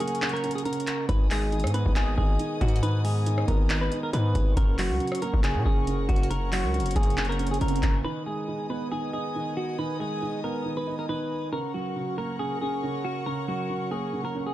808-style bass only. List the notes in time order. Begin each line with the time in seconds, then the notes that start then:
1.09 G#1
1.64 G#2
1.86 G#1
2.18 G#1
2.61 G#2
3.48 G#1
4.13 G#2
4.35 G#1
4.57 F#1
4.90 C#2
5.33 F#1
5.55 A#2
5.65 F#1
6.09 F#1
6.64 C#2
6.80 F#1
6.96 F#1
7.61 F#1
7.83 F#1